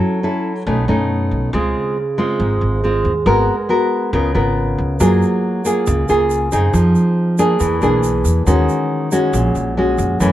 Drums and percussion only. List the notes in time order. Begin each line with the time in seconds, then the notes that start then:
5.00 shaker
5.22 shaker
5.65 shaker
5.87 shaker
6.08 shaker
6.30 shaker
6.52 shaker
6.74 shaker
6.95 shaker
7.38 shaker
7.60 shaker
7.82 shaker
8.03 shaker
8.25 shaker
8.47 shaker
8.69 shaker
9.12 shaker
9.34 shaker
9.55 shaker
9.98 shaker
10.21 shaker